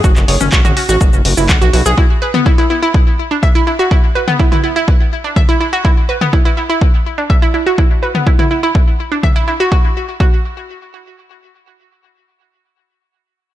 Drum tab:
HH |--o---o---o---o-|----------------|----------------|----------------|
SH |xx-xxx-xxx-xxx-x|----------------|----------------|----------------|
CP |-x--x-------x---|----------------|----------------|----------------|
T2 |---o-o------o---|---o------------|---o-o------o---|---o------------|
BD |o---o---o---o---|o---o---o---o---|o---o---o---o---|o---o---o---o---|

HH |----------------|----------------|----------------|
SH |----------------|----------------|----------------|
CP |----------------|----------------|----------------|
T2 |---o-o------o---|----------------|----------------|
BD |o---o---o---o---|o---o-----------|----------------|